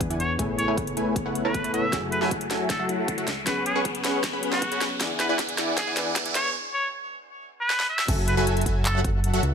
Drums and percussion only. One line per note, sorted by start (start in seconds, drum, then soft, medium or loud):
0.01 kick loud
0.01 closed hi-hat medium
0.11 closed hi-hat medium
0.20 closed hi-hat medium
0.39 kick medium
0.39 closed hi-hat medium
0.59 closed hi-hat medium
0.78 kick medium
0.78 closed hi-hat medium
0.87 closed hi-hat medium
0.97 closed hi-hat medium
1.16 kick medium
1.16 closed hi-hat medium
1.35 closed hi-hat medium
1.54 kick medium
1.54 closed hi-hat medium
1.64 closed hi-hat medium
1.74 closed hi-hat medium
1.93 kick loud
1.93 snare soft
1.93 closed hi-hat medium
2.12 closed hi-hat medium
2.22 snare soft
2.31 kick medium
2.31 closed hi-hat medium
2.41 closed hi-hat medium
2.51 snare medium
2.51 closed hi-hat medium
2.70 kick loud
2.70 snare medium
2.70 closed hi-hat medium
2.89 closed hi-hat medium
3.08 kick loud
3.08 closed hi-hat medium
3.18 closed hi-hat medium
3.28 snare medium
3.28 closed hi-hat medium
3.47 kick loud
3.47 snare medium
3.47 closed hi-hat medium
3.66 closed hi-hat medium
3.85 kick loud
3.85 closed hi-hat medium
3.95 closed hi-hat medium
4.04 snare medium
4.04 closed hi-hat medium
4.24 kick medium
4.24 snare medium
4.24 closed hi-hat medium
4.43 closed hi-hat medium
4.52 snare medium
4.62 kick loud
4.62 closed hi-hat medium
4.72 closed hi-hat medium
4.81 snare medium
4.81 closed hi-hat medium
5.00 kick loud
5.00 snare medium
5.00 closed hi-hat medium
5.20 snare medium
5.20 closed hi-hat medium
5.39 kick medium
5.39 snare medium
5.39 closed hi-hat medium
5.49 closed hi-hat medium
5.58 snare medium
5.58 closed hi-hat medium
5.77 kick loud
5.77 snare medium
5.77 closed hi-hat medium
5.97 snare medium
5.97 closed hi-hat medium
6.16 kick loud
6.16 snare medium
6.16 closed hi-hat medium
6.26 closed hi-hat medium
6.35 snare medium
6.35 closed hi-hat medium
7.70 snare medium
7.80 snare medium
7.99 snare medium
8.08 kick loud
8.08 closed hi-hat medium
8.08 crash loud
8.28 closed hi-hat medium
8.47 closed hi-hat medium
8.57 closed hi-hat medium
8.61 closed hi-hat medium
8.66 kick medium
8.66 closed hi-hat medium
8.86 clap loud
8.86 closed hi-hat medium
9.04 kick loud
9.04 closed hi-hat medium
9.24 closed hi-hat medium
9.34 closed hi-hat medium
9.43 closed hi-hat medium